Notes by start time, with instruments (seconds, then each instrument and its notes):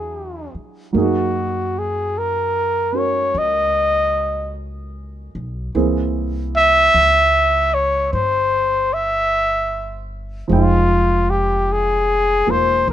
Already playing: upright bass E2, upright piano F#3 D4 E4 G#4, trumpet G#4
0.55 muted upright bass stroke
0.93 upright bass F#2, upright piano F#3 A#3 D#4
0.97 trumpet F#4, upright piano G#4
1.79 trumpet G#4
2.18 trumpet A#4
2.92 upright piano C#4 F#4 A#4
2.98 trumpet C#5
3.35 upright bass C#2, trumpet D#5
5.35 upright bass B1
5.75 upright bass C2, upright piano E3 A#3 C4 G#4
6.56 trumpet E5
6.94 upright bass C#2
7.74 trumpet C#5
8.13 upright bass G1, trumpet C5
8.94 trumpet E5
10.48 upright bass F1, upright piano F3 G#3 D#4
10.53 trumpet F4, upright piano G5
11.30 trumpet G4
11.72 trumpet G#4
12.46 upright bass E1, upright piano A#3 F4 C5
12.51 trumpet C5
12.88 upright bass C2